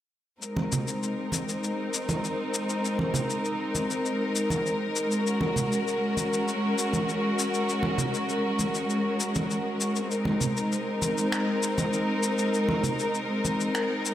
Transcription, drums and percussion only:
0.42 cabasa
0.57 high conga
0.72 low conga, cabasa
0.88 cabasa
1.03 cabasa
1.32 high conga, cabasa
1.49 cabasa
1.64 cabasa
1.94 cabasa
2.09 high conga, cabasa
2.24 cabasa
2.54 cabasa
2.69 cabasa
2.85 cabasa
2.99 high conga
3.14 low conga, cabasa
3.30 cabasa
3.45 cabasa
3.75 high conga, cabasa
3.91 cabasa
4.05 cabasa
4.36 cabasa
4.50 high conga, cabasa
4.66 cabasa
4.96 cabasa
5.11 cabasa
5.27 cabasa
5.41 high conga
5.56 low conga, cabasa
5.72 cabasa
5.88 cabasa
6.17 high conga, cabasa
6.33 cabasa
6.48 cabasa
6.78 cabasa
6.93 high conga, cabasa
7.09 cabasa
7.39 cabasa
7.54 cabasa
7.69 cabasa
7.83 high conga
7.98 low conga, cabasa
8.14 cabasa
8.29 cabasa
8.59 high conga, cabasa
8.75 cabasa
8.90 cabasa
9.20 cabasa
9.35 high conga, cabasa
9.51 cabasa
9.81 cabasa
9.96 cabasa
10.11 cabasa
10.25 high conga
10.41 low conga, cabasa
10.57 cabasa
10.72 cabasa
11.02 high conga, cabasa
11.18 cabasa
11.32 finger snap, cabasa
11.63 cabasa
11.78 high conga, cabasa
11.93 cabasa
12.23 cabasa
12.38 cabasa
12.54 cabasa
12.69 high conga
12.83 low conga, cabasa
12.99 cabasa
13.14 cabasa
13.45 high conga, cabasa
13.60 cabasa
13.75 finger snap, cabasa
14.05 cabasa

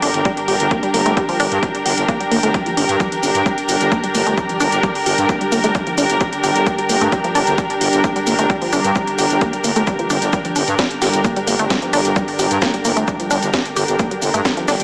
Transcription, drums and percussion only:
0.02 open hi-hat
0.14 closed hi-hat
0.25 kick, closed hi-hat
0.37 closed hi-hat
0.48 open hi-hat
0.60 closed hi-hat
0.71 kick, closed hi-hat
0.83 closed hi-hat
0.94 open hi-hat
1.06 closed hi-hat
1.17 kick, closed hi-hat
1.29 open hi-hat
1.40 open hi-hat
1.52 closed hi-hat
1.63 kick, closed hi-hat
1.75 closed hi-hat
1.86 open hi-hat
1.98 closed hi-hat
2.08 kick, closed hi-hat
2.21 closed hi-hat
2.32 open hi-hat
2.43 closed hi-hat
2.54 kick, closed hi-hat
2.66 closed hi-hat
2.77 open hi-hat
2.89 closed hi-hat
3.00 kick, closed hi-hat, shaker
3.12 closed hi-hat, shaker
3.23 open hi-hat, shaker
3.35 closed hi-hat, shaker
3.46 kick, closed hi-hat, shaker
3.58 closed hi-hat, shaker
3.69 open hi-hat, shaker
3.81 closed hi-hat, shaker
3.92 kick, closed hi-hat, shaker
4.04 closed hi-hat, shaker
4.15 open hi-hat, shaker
4.27 closed hi-hat, shaker
4.38 kick, closed hi-hat, shaker
4.49 closed hi-hat, shaker
4.60 open hi-hat, shaker
4.72 closed hi-hat, shaker
4.83 kick, closed hi-hat, shaker
4.95 open hi-hat, shaker
5.06 open hi-hat, shaker
5.18 closed hi-hat, shaker
5.29 kick, closed hi-hat, shaker
5.41 closed hi-hat, shaker
5.52 open hi-hat, shaker
5.64 closed hi-hat, shaker
5.75 kick, closed hi-hat, shaker
5.87 closed hi-hat, shaker
5.98 open hi-hat, shaker
6.10 closed hi-hat, shaker
6.21 kick, closed hi-hat, shaker
6.33 closed hi-hat, shaker
6.44 open hi-hat, shaker
6.56 closed hi-hat, shaker
6.67 kick, closed hi-hat, shaker
6.78 closed hi-hat, shaker
6.89 open hi-hat, shaker
7.01 closed hi-hat, shaker
7.12 kick, closed hi-hat, shaker
7.24 closed hi-hat, shaker
7.35 open hi-hat, shaker
7.47 closed hi-hat, shaker
7.58 kick, closed hi-hat, shaker
7.70 closed hi-hat, shaker
7.81 open hi-hat, shaker
7.93 closed hi-hat, shaker
8.04 kick, closed hi-hat, shaker
8.16 closed hi-hat, shaker
8.27 open hi-hat, shaker
8.39 closed hi-hat, shaker
8.50 kick, closed hi-hat, shaker
8.62 open hi-hat, shaker
8.73 open hi-hat, shaker
8.84 closed hi-hat, shaker
8.96 kick, closed hi-hat, shaker
9.07 closed hi-hat, shaker
9.18 open hi-hat, shaker
9.30 closed hi-hat, shaker
9.41 kick, closed hi-hat, shaker
9.53 closed hi-hat, shaker
9.64 open hi-hat, shaker
9.76 closed hi-hat, shaker
9.87 kick, closed hi-hat, shaker
9.99 closed hi-hat, shaker
10.10 open hi-hat, shaker
10.22 closed hi-hat, shaker
10.33 kick, closed hi-hat, shaker
10.45 closed hi-hat, shaker
10.56 open hi-hat, shaker
10.68 closed hi-hat, shaker
10.79 kick, snare, closed hi-hat, shaker
10.91 closed hi-hat, shaker
11.02 snare, open hi-hat, shaker
11.14 closed hi-hat, shaker
11.25 kick, closed hi-hat, shaker
11.36 closed hi-hat, shaker
11.47 open hi-hat, shaker
11.59 closed hi-hat, shaker
11.70 kick, snare, closed hi-hat, shaker
11.82 closed hi-hat, shaker
11.93 open hi-hat, shaker
12.05 closed hi-hat, shaker
12.16 kick, closed hi-hat, shaker
12.28 open hi-hat, shaker
12.39 open hi-hat, shaker
12.51 closed hi-hat, shaker
12.62 kick, snare, closed hi-hat, shaker
12.74 closed hi-hat, shaker
12.85 open hi-hat, shaker
12.97 closed hi-hat, shaker
13.08 kick, closed hi-hat, shaker
13.20 closed hi-hat, shaker
13.31 open hi-hat, shaker
13.43 closed hi-hat, shaker
13.54 kick, snare, closed hi-hat, shaker
13.65 closed hi-hat, shaker
13.76 open hi-hat, shaker
13.88 closed hi-hat, shaker
13.99 kick, closed hi-hat, shaker
14.11 closed hi-hat, shaker
14.22 open hi-hat, shaker
14.34 closed hi-hat, shaker
14.45 kick, snare, closed hi-hat, shaker
14.57 closed hi-hat, shaker
14.68 snare, open hi-hat, shaker
14.80 closed hi-hat, shaker

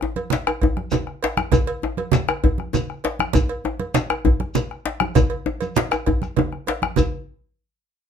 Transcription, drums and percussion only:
0.01 bombo rim, high conga, djembe tone
0.16 cowbell, high conga
0.30 bombo rim, djembe slap, low conga, shekere
0.47 bombo rim, cowbell, djembe tone
0.61 bombo low, cowbell, djembe bass
0.77 bombo rim, high conga
0.91 cowbell, djembe tone, low conga, shekere
1.07 bombo rim
1.23 cowbell, djembe slap
1.37 bombo rim, high conga, djembe tone
1.52 bombo rim, bombo low, cowbell, high conga, low conga, djembe bass, shekere
1.67 cowbell
1.82 bombo rim, high conga, djembe tone
1.97 cowbell, high conga
2.12 bombo rim, djembe slap, low conga, shekere
2.28 bombo rim, cowbell, djembe tone
2.44 bombo low, cowbell, djembe bass
2.58 bombo rim, high conga
2.73 cowbell, djembe tone, low conga, shekere
2.90 bombo rim
3.04 cowbell, djembe slap
3.19 bombo rim, high conga, djembe tone
3.33 bombo rim, bombo low, cowbell, high conga, low conga, djembe bass, shekere
3.49 cowbell
3.64 bombo rim, high conga, djembe tone
3.79 cowbell, high conga
3.94 bombo rim, djembe slap, low conga, shekere
4.10 bombo rim, cowbell, djembe tone
4.25 bombo low, cowbell, djembe bass
4.40 bombo rim, high conga
4.55 cowbell, djembe tone, low conga, shekere
4.71 bombo rim
4.86 djembe slap
5.00 bombo rim, high conga, djembe tone
5.15 bombo low, cowbell, low conga, djembe bass, shekere
5.30 cowbell, djembe slap
5.46 djembe slap, djembe tone
5.61 cowbell, high conga, shekere
5.76 djembe slap, high conga, low conga, shekere
5.91 bombo rim, cowbell, djembe tone, shekere
6.06 bombo rim, bombo low, cowbell, high conga, djembe bass
6.22 bombo rim, djembe slap, high conga, shekere
6.37 cowbell, djembe slap, djembe tone, low conga
6.52 bombo rim, high conga
6.67 cowbell, djembe slap, high conga
6.82 bombo rim, djembe slap, high conga, djembe tone
6.96 bombo low, cowbell, low conga, djembe bass, shekere

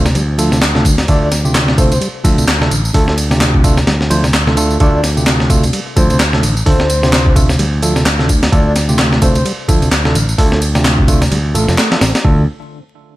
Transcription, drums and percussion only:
0.06 snare, tambourine
0.15 ride, tambourine
0.39 ride, tambourine
0.52 snare, tambourine
0.62 snare, clap, ride, tambourine
0.75 snare
0.85 kick, ride, tambourine
0.98 snare, ride, tambourine
1.08 kick, ride, tambourine
1.32 snare, ride, tambourine
1.45 tambourine
1.55 snare, clap, ride, tambourine
1.68 snare
1.78 kick, ride, tambourine
1.92 ride, tambourine
2.02 ride, tambourine
2.25 kick, ride, tambourine
2.38 ride, tambourine
2.48 snare, clap, ride
2.62 snare
2.71 ride, tambourine
2.85 tambourine
2.94 kick, open hi-hat
3.08 snare
3.18 ride, tambourine
3.31 snare, tambourine
3.41 snare, clap, ride, tambourine
3.54 kick
3.64 kick, ride, tambourine
3.77 snare, tambourine
3.87 snare, ride, tambourine
4.01 snare
4.11 ride, tambourine
4.24 snare, tambourine
4.34 snare, clap, ride, tambourine
4.47 snare
4.57 ride, tambourine
4.70 tambourine
4.80 kick, ride, tambourine
5.04 snare, ride, tambourine
5.17 tambourine
5.27 snare, clap, ride, tambourine
5.40 snare
5.50 kick, ride, tambourine
5.63 ride, tambourine
5.73 ride, tambourine
5.97 kick, ride, tambourine
6.10 ride, tambourine
6.20 snare, clap, ride, tambourine
6.33 snare
6.43 ride, tambourine
6.57 tambourine
6.66 kick, open hi-hat, tambourine
6.80 snare
6.90 ride, tambourine
7.03 snare, tambourine
7.13 snare, clap, ride, tambourine
7.26 kick
7.36 kick, ride, tambourine
7.49 snare, tambourine
7.59 ride, tambourine
7.82 ride, tambourine
7.96 snare, tambourine
8.06 snare, clap, ride, tambourine
8.19 snare
8.29 kick, ride, tambourine
8.43 snare, ride, tambourine
8.52 kick, ride, tambourine
8.76 snare, ride, tambourine
8.89 tambourine
8.99 snare, clap, ride, tambourine
9.13 snare
9.22 kick, ride, tambourine
9.35 ride, tambourine
9.45 ride, tambourine
9.69 kick, ride, tambourine
9.82 ride, tambourine
9.92 snare, clap, ride, tambourine
10.05 snare
10.15 ride, tambourine
10.29 tambourine
10.38 kick, open hi-hat, tambourine
10.52 snare
10.62 ride, tambourine
10.75 snare, tambourine
10.85 snare, clap, ride, tambourine
10.98 kick
11.08 kick, ride, tambourine
11.22 snare, ride, tambourine
11.32 ride, tambourine
11.55 ride, tambourine
11.68 snare, tambourine
11.78 snare, clap, ride, tambourine
11.92 snare, ride
12.01 snare, ride, tambourine
12.15 snare, ride, tambourine
12.25 kick

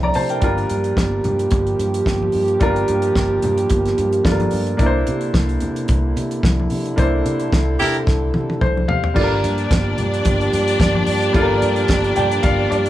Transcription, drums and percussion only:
0.03 high conga
0.14 open hi-hat
0.29 closed hi-hat
0.42 kick, closed hi-hat, muted conga
0.58 closed hi-hat
0.70 closed hi-hat
0.84 closed hi-hat
0.97 kick, snare, high conga
1.24 closed hi-hat, low conga
1.39 closed hi-hat
1.51 kick, closed hi-hat, muted conga
1.67 closed hi-hat
1.79 closed hi-hat
1.94 closed hi-hat
2.06 kick, snare, high conga
2.22 high conga
2.32 open hi-hat
2.48 closed hi-hat
2.61 kick, closed hi-hat, muted conga
2.76 closed hi-hat
2.88 closed hi-hat
3.02 closed hi-hat
3.16 kick, snare, high conga
3.42 closed hi-hat, low conga
3.58 closed hi-hat
3.70 kick, closed hi-hat, muted conga
3.86 snare, closed hi-hat
3.98 closed hi-hat, muted conga
4.13 closed hi-hat
4.25 kick, snare, high conga
4.40 closed hi-hat, high conga
4.51 open hi-hat
4.67 closed hi-hat
4.79 kick, closed hi-hat, muted conga
5.07 closed hi-hat
5.21 closed hi-hat
5.34 kick, snare, high conga
5.49 closed hi-hat
5.60 closed hi-hat, low conga
5.76 closed hi-hat
5.88 kick, closed hi-hat, muted conga
6.16 closed hi-hat, muted conga
6.31 closed hi-hat
6.43 kick, snare, high conga
6.59 high conga
6.70 open hi-hat
6.86 closed hi-hat
6.98 kick, closed hi-hat, muted conga
7.26 closed hi-hat
7.39 closed hi-hat
7.52 kick, snare, high conga
7.79 open hi-hat, low conga
7.94 closed hi-hat
8.07 kick, snare, muted conga
8.34 high tom, muted conga
8.50 high tom
8.61 kick, mid tom, high conga
8.77 high conga
8.89 floor tom
9.04 floor tom
9.16 kick, crash, muted conga
9.44 closed hi-hat
9.58 closed hi-hat
9.71 kick, snare, closed hi-hat, high conga
9.98 closed hi-hat, low conga
10.14 closed hi-hat
10.25 kick, closed hi-hat, muted conga, low conga
10.41 closed hi-hat
10.53 closed hi-hat, muted conga
10.68 closed hi-hat
10.80 kick, snare, closed hi-hat, high conga
10.95 high conga
11.07 open hi-hat
11.22 closed hi-hat
11.34 kick, closed hi-hat, muted conga
11.62 closed hi-hat
11.76 closed hi-hat
11.88 kick, snare, closed hi-hat, high conga
12.04 closed hi-hat
12.16 closed hi-hat, low conga
12.31 closed hi-hat
12.43 kick, closed hi-hat, muted conga, low conga
12.72 closed hi-hat
12.86 closed hi-hat

